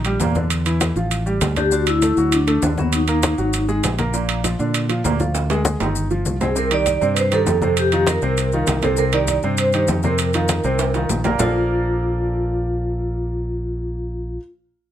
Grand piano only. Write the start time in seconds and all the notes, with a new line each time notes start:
0.05 G3 G4
0.21 A#2 A#3
0.36 D3 D4
0.66 E3 E4
0.96 F3 F4
1.26 G3 G4
1.57 D4 D5
1.72 D3 D4
2.02 A3 A4
2.17 F#3 F#4
2.47 A3 A4
2.62 D3 D4
2.78 F#3 F#4
3.08 A#3 A#4
3.38 F#3 F#4
3.68 G#3 G#4
3.99 A#3 A#4
4.14 A#2 A#3
4.44 F3 F4
4.59 D3 D4
4.89 F3 F4
5.05 A#2 A#3
5.20 F3 F4
5.50 G#3 G#4
5.80 D#3 D#4
6.11 F3 F4
6.41 C4 C5
6.56 C3 C4 C5
6.71 D#3 D#4 G4
7.01 C3 C4 C5
7.31 D#3 D#4 G4
7.62 C3 C4 C5
7.92 D#3 D#4 F4
8.23 C3 C4 C5
8.53 D#3 D#4 F4
8.83 C3 C4 C5
8.98 C3 C4 C5
9.13 D#3 D#4 G4
9.44 C3 C4 C5
9.74 D#3 D#4 G4
10.04 C3 C4 C5
10.34 D#3 D#4 F4
10.64 C3 C4 C5
10.95 D#3 D#4 F4
11.25 A#2 A#3 A#4
11.39 A#3 F4 A4 A#4 C5 D5